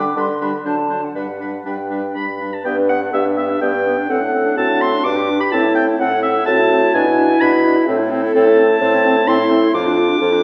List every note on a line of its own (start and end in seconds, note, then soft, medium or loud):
0.00 0.11 D3 medium
0.00 0.17 D6 loud
0.16 0.59 D3 medium
0.16 0.28 G3 medium
0.16 0.27 D4 medium
0.16 0.28 B4 medium
0.16 0.41 C6 loud
0.41 0.52 G3 medium
0.41 0.52 D4 medium
0.41 0.52 B4 medium
0.41 0.48 B5 loud
0.65 1.09 D3 medium
0.65 0.77 F#3 medium
0.65 0.77 D4 medium
0.65 0.76 C5 medium
0.65 1.05 A5 loud
0.89 1.02 F#3 medium
0.89 1.01 D4 medium
0.89 1.01 C5 medium
1.04 1.15 F#5 medium
1.15 1.59 G2 medium
1.15 1.27 G3 medium
1.15 1.26 D4 medium
1.15 1.27 B4 medium
1.15 1.67 F#5 medium
1.40 1.52 G3 medium
1.40 1.51 D4 medium
1.40 1.52 B4 medium
1.65 2.09 G2 medium
1.65 1.77 G3 medium
1.65 1.77 D4 medium
1.65 1.77 B4 medium
1.65 2.15 G5 medium
1.90 2.02 G3 medium
1.90 2.01 D4 medium
1.90 2.02 B4 medium
2.14 2.60 G2 medium
2.14 2.27 G3 medium
2.14 2.26 D4 medium
2.14 2.55 B5 medium
2.40 2.51 G3 soft
2.40 2.52 D4 medium
2.54 2.64 A5 medium
2.64 3.08 G2 medium
2.64 2.80 B3 medium
2.64 3.15 B4 medium
2.64 2.79 B4 medium
2.64 2.76 G5 loud
2.78 2.92 D4 medium
2.78 2.92 D5 medium
2.89 3.03 B3 medium
2.89 3.04 B4 medium
2.89 3.00 F#5 loud
3.02 3.13 D4 medium
3.02 3.14 D5 medium
3.13 3.56 G2 loud
3.13 3.27 B3 medium
3.13 3.64 G4 medium
3.13 3.27 B4 medium
3.13 3.24 E5 loud
3.25 3.39 D4 medium
3.25 3.39 D5 medium
3.37 3.52 B3 medium
3.37 3.50 B4 medium
3.37 3.61 E5 loud
3.48 3.62 D4 medium
3.48 3.60 D5 medium
3.61 3.96 G2 loud
3.61 3.75 B3 medium
3.61 3.75 B4 medium
3.61 4.09 B4 medium
3.61 4.12 G5 loud
3.73 3.88 D4 medium
3.73 3.87 D5 medium
3.85 3.99 B3 medium
3.85 3.99 B4 medium
3.97 4.09 D4 medium
3.97 4.08 D5 medium
4.09 4.52 A2 medium
4.09 4.23 C4 medium
4.09 4.59 A4 loud
4.09 4.22 C5 medium
4.09 4.57 F#5 loud
4.21 4.35 D4 medium
4.21 4.34 D5 medium
4.32 4.48 C4 medium
4.32 4.47 C5 medium
4.45 4.57 D4 medium
4.45 4.56 D5 medium
4.57 4.99 A2 medium
4.57 4.71 C4 medium
4.57 5.04 F#4 medium
4.57 4.70 C5 medium
4.57 4.83 A5 loud
4.68 4.83 D4 medium
4.68 4.82 D5 medium
4.80 4.95 C4 medium
4.80 4.93 C5 medium
4.80 5.05 C6 loud
4.92 5.04 D4 medium
4.92 5.03 D5 medium
5.04 5.47 G2 loud
5.04 5.18 D4 medium
5.04 5.54 G4 medium
5.04 5.18 B4 medium
5.04 5.40 D6 loud
5.17 5.30 G4 medium
5.17 5.29 D5 medium
5.28 5.43 D4 medium
5.28 5.42 B4 medium
5.40 5.53 G4 medium
5.40 5.52 D5 medium
5.40 5.51 B5 loud
5.52 5.94 A2 loud
5.52 5.66 C4 medium
5.52 5.98 E4 loud
5.52 5.66 C5 medium
5.52 5.74 A5 loud
5.64 5.78 E4 medium
5.64 5.78 A4 medium
5.75 5.90 C4 medium
5.75 5.90 C5 medium
5.75 5.86 G5 loud
5.89 6.00 E4 medium
5.89 5.99 A4 medium
5.99 6.41 A2 loud
5.99 6.14 C4 medium
5.99 6.46 A4 loud
5.99 6.13 C5 medium
5.99 6.22 F#5 loud
6.12 6.25 E4 medium
6.12 6.25 A4 medium
6.22 6.38 C4 medium
6.22 6.37 C5 medium
6.22 6.45 E5 loud
6.36 6.47 E4 medium
6.36 6.47 A4 medium
6.46 6.89 A2 loud
6.46 6.61 C4 medium
6.46 6.96 F#4 loud
6.46 6.61 C5 medium
6.46 6.93 A5 loud
6.59 6.72 E4 medium
6.59 6.74 A4 medium
6.70 6.84 C4 medium
6.70 6.85 C5 medium
6.83 6.94 E4 medium
6.83 6.95 A4 medium
6.94 7.35 B2 loud
6.94 7.08 D4 medium
6.94 7.89 E4 loud
6.94 7.09 D5 medium
6.94 7.42 G#5 loud
7.06 7.19 E4 medium
7.06 7.21 E5 medium
7.18 7.31 D4 medium
7.18 7.32 D5 medium
7.29 7.41 E4 medium
7.29 7.41 E5 medium
7.40 7.82 B2 loud
7.40 7.55 D4 medium
7.40 7.55 D5 medium
7.40 7.87 B5 loud
7.53 7.67 E4 medium
7.53 7.67 E5 medium
7.65 7.78 D4 medium
7.65 7.79 D5 medium
7.76 7.87 E4 medium
7.76 7.88 E5 medium
7.87 8.30 A2 loud
7.87 8.01 C4 medium
7.87 8.80 A4 loud
7.87 8.03 C5 medium
8.00 8.13 E4 medium
8.00 8.14 A4 medium
8.11 8.25 C4 medium
8.11 8.26 C5 medium
8.23 8.34 E4 medium
8.23 8.35 A4 medium
8.35 8.76 A2 loud
8.35 8.49 C4 medium
8.35 8.49 C5 medium
8.35 9.29 A5 loud
8.47 8.60 E4 medium
8.47 8.60 A4 medium
8.58 8.72 C4 medium
8.58 8.71 C5 medium
8.70 8.82 E4 medium
8.70 8.81 A4 medium
8.80 9.22 A2 loud
8.80 9.29 C4 loud
8.80 8.96 C4 medium
8.80 8.94 C5 medium
8.93 9.07 E4 medium
8.93 9.05 A4 medium
9.04 9.19 C4 medium
9.04 9.17 C5 medium
9.15 9.28 E4 medium
9.15 9.26 A4 medium
9.27 9.69 A2 loud
9.27 9.41 C4 medium
9.27 9.76 E4 loud
9.27 9.41 C5 medium
9.27 9.74 C6 loud
9.39 9.52 E4 medium
9.39 9.53 A4 medium
9.51 9.65 C4 medium
9.51 9.64 C5 medium
9.63 9.75 E4 medium
9.63 9.73 A4 medium
9.73 10.15 F2 loud
9.73 10.21 F4 loud
9.73 9.88 F4 medium
9.73 9.86 A4 medium
9.73 10.43 D6 loud
9.85 9.99 D4 medium
9.85 9.98 F4 medium
9.97 10.11 F4 medium
9.97 10.10 A4 medium
10.09 10.21 D4 medium
10.09 10.19 F4 medium
10.20 10.43 F2 loud
10.20 10.35 F4 medium
10.20 10.33 A4 medium
10.20 10.43 A4 loud
10.32 10.43 D4 medium
10.32 10.43 F4 medium